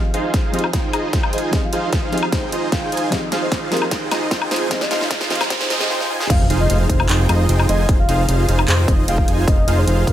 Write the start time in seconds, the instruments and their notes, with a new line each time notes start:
Already playing: synth pluck F3 C4 G4 G#4 D#5, soft synth lead F5, riser
0.14 supersaw synth D#4 F4 G#4 C5 F5, closed hi-hat
0.24 soft synth lead D#5
0.34 supersaw synth D#4 F4 G#4 C5 F5, kick, snare, closed hi-hat
0.52 synth pluck F3 C4 G4 G#4 D#5, supersaw synth D#4 F4 G#4 C5 F5, soft synth lead C5, closed hi-hat
0.59 closed hi-hat
0.64 high woodblock
0.73 supersaw synth D#4 F4 G#4 C5 G5, kick, snare, closed hi-hat
0.93 supersaw synth D#4 F4 G#4 C5 D#5, closed hi-hat, high woodblock
1.13 supersaw synth D#4 F4 G#4 C5 G5, kick, snare, closed hi-hat
1.23 high woodblock
1.33 supersaw synth D#4 F4 G#4 C5 G#5, soft synth lead D#5, closed hi-hat
1.38 closed hi-hat
1.51 synth pluck F3 C4 G4 G#4, supersaw synth D#4 F4 G#4 C5 F5, kick, snare, closed hi-hat
1.55 synth pluck D#5
1.64 soft synth lead F5
1.73 supersaw synth D#4 F4 G#4 C5 F5, closed hi-hat
1.92 supersaw synth D#4 F4 G#4 C5 F5, kick, snare, closed hi-hat
2.12 synth pluck F3 C4 G4 G#4 D#5, supersaw synth D#4 F4 G#4 C5 F5, closed hi-hat
2.18 closed hi-hat
2.23 high woodblock
2.32 supersaw synth D#4 F4 G#4 C5 G5, soft synth lead C5, kick, snare, closed hi-hat
2.52 supersaw synth D#4 F4 G#4 C5 D#5, closed hi-hat
2.72 supersaw synth D#4 F4 G#4 C5 G5, soft synth lead F5, kick, snare, closed hi-hat
2.92 supersaw synth D#4 F4 G#4 C5 G#5, closed hi-hat
2.97 closed hi-hat
3.10 synth pluck F3 C4 G4 G#4, supersaw synth D#4 F4 G#4 C5 F5, soft synth lead D#5, kick, snare, closed hi-hat
3.14 synth pluck D#5
3.32 supersaw synth D#4 F4 G#4 C5 F5, snare, closed hi-hat
3.42 soft synth lead C5
3.51 supersaw synth D#4 F4 G#4 C5 F5, kick, snare, closed hi-hat
3.71 synth pluck F3 C4 G4 G#4 D#5, supersaw synth D#4 F4 G#4 C5 F5, soft synth lead A#4, snare, closed hi-hat
3.77 closed hi-hat
3.82 high woodblock
3.91 supersaw synth D#4 F4 G#4 C5 G5, kick, snare, closed hi-hat
4.11 supersaw synth D#4 F4 G#4 C5 D#5, snare, closed hi-hat, high woodblock
4.31 supersaw synth D#4 F4 G#4 C5 G5, kick, snare, closed hi-hat
4.42 high woodblock
4.51 supersaw synth D#4 F4 G#4 C5 G#5, soft synth lead C5, snare, closed hi-hat
4.56 closed hi-hat
4.69 synth pluck F3 C4 G4 G#4, supersaw synth D#4 F4 G#4 C5 F5, kick, snare, closed hi-hat
4.73 synth pluck D#5
4.81 soft synth lead D#5, snare
4.91 supersaw synth D#4 F4 G#4 C5 F5, snare, closed hi-hat
5.01 snare
5.10 supersaw synth D#4 F4 G#4 C5 F5, kick, snare, closed hi-hat
5.21 snare
5.29 synth pluck F3 C4 G4 G#4 D#5, supersaw synth D#4 F4 G#4 C5 F5, snare, closed hi-hat
5.35 closed hi-hat
5.41 snare, high woodblock
5.50 supersaw synth D#4 F4 G#4 C5 G5, soft synth lead C5, kick, snare, closed hi-hat
5.61 snare
5.70 supersaw synth D#4 F4 G#4 C5 D#5, snare, closed hi-hat
5.78 synth pluck F3 C4 G4 G#4, snare
5.82 synth pluck D#5
5.90 supersaw synth D#4 F4 G#4 C5 G5, snare
6.00 snare
6.10 supersaw synth D#4 F4 G#4 C5 G#5
6.20 snare
6.30 analog synth bass F1, supersaw synth D#4 F4 G#4 C5 F5, soft synth lead F5, kick, closed hi-hat, crash, impact
6.50 analog synth bass F1, supersaw synth D#4 F4 G#4 C5 F5, closed hi-hat
6.60 soft synth lead D#5
6.69 analog synth bass F1, supersaw synth D#4 F4 G#4 C5 F5, closed hi-hat
6.89 analog synth bass F1, supersaw synth D#4 F4 G#4 C5 F5, soft synth lead C5, kick, closed hi-hat
7.00 high woodblock
7.09 analog synth bass F1, supersaw synth D#4 F4 G#4 C5 G5, clap, closed hi-hat
7.29 analog synth bass F1, supersaw synth D#4 F4 G#4 C5 D#5, closed hi-hat, high woodblock
7.49 analog synth bass F1, supersaw synth D#4 F4 G#4 C5 G5, closed hi-hat
7.59 high woodblock
7.69 analog synth bass F1, supersaw synth D#4 F4 G#4 C5 G#5, soft synth lead D#5, closed hi-hat
7.89 analog synth bass F1, supersaw synth D#4 F4 G#4 C5 F5, kick, closed hi-hat
7.99 soft synth lead F5
8.08 analog synth bass F1, supersaw synth D#4 F4 G#4 C5 F5, closed hi-hat
8.28 analog synth bass F1, supersaw synth D#4 F4 G#4 C5 F5, closed hi-hat
8.48 analog synth bass F1, supersaw synth D#4 F4 G#4 C5 F5, closed hi-hat
8.59 high woodblock
8.68 analog synth bass F1, supersaw synth D#4 F4 G#4 C5 G5, soft synth lead C5, clap, closed hi-hat
8.88 analog synth bass F1, supersaw synth D#4 F4 G#4 C5 D#5, kick, closed hi-hat
9.08 analog synth bass F1, supersaw synth D#4 F4 G#4 C5 G5, soft synth lead F5, closed hi-hat
9.18 kick
9.28 analog synth bass F1, supersaw synth D#4 F4 G#4 C5 G#5, closed hi-hat
9.48 analog synth bass F1, supersaw synth D#4 F4 G#4 C5 F5, soft synth lead D#5, kick, closed hi-hat
9.67 analog synth bass F1, supersaw synth D#4 F4 G#4 C5 F5, closed hi-hat
9.78 soft synth lead C5
9.87 analog synth bass F1, supersaw synth D#4 F4 G#4 C5 F5, closed hi-hat
10.07 analog synth bass F1, supersaw synth D#4 F4 G#4 C5 F5, soft synth lead A#4, kick, closed hi-hat